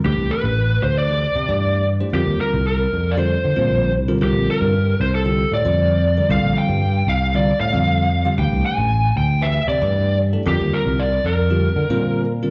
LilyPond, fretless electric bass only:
\new Staff \with { instrumentName = "Fretless electric bass" } { \clef bass \time 4/4 \key d \phrygian \tempo 4 = 115 d,16 c,16 r16 a,,8. d,4 c16 g,4~ g,16 | f,16 ees,16 r16 c,8. f,4 d16 bes,16 bes,,8 c,8 | c,16 bes,,16 r16 g,8. c,4 a,16 f,4~ f,16 | c,16 bes,,16 r16 g,8. c,4 a,16 f,4~ f,16 |
d,16 c,16 r16 a,,8. d,4 c16 g,4~ g,16 | f,16 ees,16 r16 c,8. f,4 d16 bes,4~ bes,16 | }